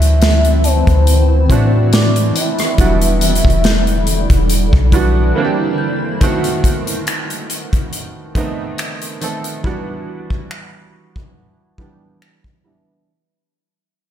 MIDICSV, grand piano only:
0, 0, Header, 1, 2, 480
1, 0, Start_track
1, 0, Key_signature, 1, "minor"
1, 0, Tempo, 857143
1, 1559, Time_signature, 4, 2, 24, 8
1, 7900, End_track
2, 0, Start_track
2, 0, Title_t, "Grand piano"
2, 0, Program_c, 0, 0
2, 0, Control_c, 0, 64, 127
2, 0, Note_on_c, 0, 52, 74
2, 0, Note_on_c, 0, 57, 72
2, 0, Note_on_c, 0, 60, 73
2, 0, Note_on_c, 0, 62, 69
2, 0, Note_on_c, 0, 66, 82
2, 480, Note_off_c, 0, 52, 0
2, 482, Note_off_c, 0, 57, 0
2, 484, Note_off_c, 0, 60, 0
2, 486, Note_off_c, 0, 62, 0
2, 506, Note_off_c, 0, 66, 0
2, 835, Note_on_c, 0, 52, 76
2, 839, Note_on_c, 0, 57, 68
2, 842, Note_on_c, 0, 60, 70
2, 846, Note_on_c, 0, 62, 70
2, 850, Note_on_c, 0, 66, 82
2, 1469, Note_off_c, 0, 52, 0
2, 1471, Note_off_c, 0, 57, 0
2, 1473, Note_off_c, 0, 60, 0
2, 1474, Note_off_c, 0, 62, 0
2, 1477, Note_off_c, 0, 66, 0
2, 1557, Note_on_c, 0, 52, 76
2, 1560, Note_on_c, 0, 54, 55
2, 1564, Note_on_c, 0, 59, 72
2, 1567, Control_c, 0, 64, 0
2, 1568, Note_on_c, 0, 62, 68
2, 1572, Note_on_c, 0, 66, 85
2, 1598, Note_on_c, 0, 55, 72
2, 1599, Note_off_c, 0, 54, 0
2, 1657, Control_c, 0, 64, 127
2, 2399, Note_off_c, 0, 52, 0
2, 2403, Note_off_c, 0, 59, 0
2, 2405, Note_off_c, 0, 62, 0
2, 2407, Note_off_c, 0, 66, 0
2, 2420, Note_off_c, 0, 55, 0
2, 2757, Note_on_c, 0, 52, 89
2, 2761, Note_on_c, 0, 55, 78
2, 2765, Note_on_c, 0, 59, 78
2, 2769, Note_on_c, 0, 62, 75
2, 2773, Note_on_c, 0, 66, 96
2, 2988, Note_off_c, 0, 52, 0
2, 2996, Note_on_c, 0, 52, 85
2, 3000, Note_off_c, 0, 55, 0
2, 3000, Note_on_c, 0, 58, 88
2, 3001, Note_off_c, 0, 62, 0
2, 3002, Note_off_c, 0, 59, 0
2, 3004, Note_off_c, 0, 66, 0
2, 3004, Note_on_c, 0, 60, 83
2, 3008, Control_c, 0, 64, 0
2, 3009, Note_on_c, 0, 62, 83
2, 3013, Note_on_c, 0, 66, 76
2, 3045, Note_off_c, 0, 66, 0
2, 3049, Note_on_c, 0, 67, 102
2, 3091, Control_c, 0, 64, 127
2, 3419, Note_off_c, 0, 52, 0
2, 3421, Note_off_c, 0, 58, 0
2, 3423, Note_off_c, 0, 60, 0
2, 3425, Note_off_c, 0, 62, 0
2, 3445, Note_off_c, 0, 67, 0
2, 3475, Note_on_c, 0, 51, 89
2, 3480, Note_on_c, 0, 57, 77
2, 3482, Note_on_c, 0, 59, 77
2, 3487, Control_c, 0, 64, 0
2, 3488, Note_on_c, 0, 60, 80
2, 3491, Note_on_c, 0, 66, 93
2, 3574, Control_c, 0, 64, 127
2, 4318, Note_off_c, 0, 51, 0
2, 4321, Note_off_c, 0, 57, 0
2, 4322, Note_off_c, 0, 59, 0
2, 4325, Note_off_c, 0, 60, 0
2, 4327, Note_off_c, 0, 66, 0
2, 4675, Note_on_c, 0, 51, 84
2, 4679, Note_on_c, 0, 57, 79
2, 4683, Note_on_c, 0, 59, 80
2, 4687, Note_on_c, 0, 60, 73
2, 4691, Note_on_c, 0, 63, 93
2, 5098, Note_off_c, 0, 51, 0
2, 5101, Note_off_c, 0, 57, 0
2, 5103, Note_off_c, 0, 59, 0
2, 5105, Note_off_c, 0, 60, 0
2, 5106, Note_off_c, 0, 63, 0
2, 5156, Note_on_c, 0, 51, 74
2, 5160, Note_on_c, 0, 57, 69
2, 5164, Note_on_c, 0, 59, 68
2, 5167, Note_on_c, 0, 60, 68
2, 5171, Note_on_c, 0, 69, 81
2, 5368, Note_off_c, 0, 51, 0
2, 5370, Note_off_c, 0, 57, 0
2, 5372, Note_off_c, 0, 59, 0
2, 5374, Note_off_c, 0, 60, 0
2, 5376, Note_off_c, 0, 69, 0
2, 5396, Note_on_c, 0, 52, 86
2, 5399, Note_on_c, 0, 55, 78
2, 5403, Note_on_c, 0, 59, 79
2, 5407, Control_c, 0, 64, 0
2, 5408, Note_on_c, 0, 62, 81
2, 5411, Note_on_c, 0, 66, 92
2, 5495, Control_c, 0, 64, 127
2, 6239, Note_off_c, 0, 52, 0
2, 6241, Note_off_c, 0, 55, 0
2, 6243, Note_off_c, 0, 59, 0
2, 6245, Note_off_c, 0, 62, 0
2, 6247, Note_off_c, 0, 66, 0
2, 6596, Note_on_c, 0, 52, 78
2, 6600, Note_on_c, 0, 55, 75
2, 6603, Note_on_c, 0, 59, 73
2, 6607, Note_on_c, 0, 62, 72
2, 6611, Note_on_c, 0, 67, 89
2, 7019, Note_off_c, 0, 52, 0
2, 7021, Note_off_c, 0, 55, 0
2, 7023, Note_off_c, 0, 59, 0
2, 7025, Note_off_c, 0, 62, 0
2, 7026, Note_off_c, 0, 67, 0
2, 7078, Note_on_c, 0, 52, 72
2, 7081, Note_on_c, 0, 55, 64
2, 7086, Note_on_c, 0, 59, 68
2, 7090, Note_on_c, 0, 62, 69
2, 7093, Note_on_c, 0, 64, 80
2, 7289, Note_off_c, 0, 52, 0
2, 7291, Note_off_c, 0, 55, 0
2, 7293, Note_off_c, 0, 59, 0
2, 7295, Note_off_c, 0, 62, 0
2, 7297, Note_off_c, 0, 64, 0
2, 7327, Control_c, 0, 64, 0
2, 7900, End_track
0, 0, End_of_file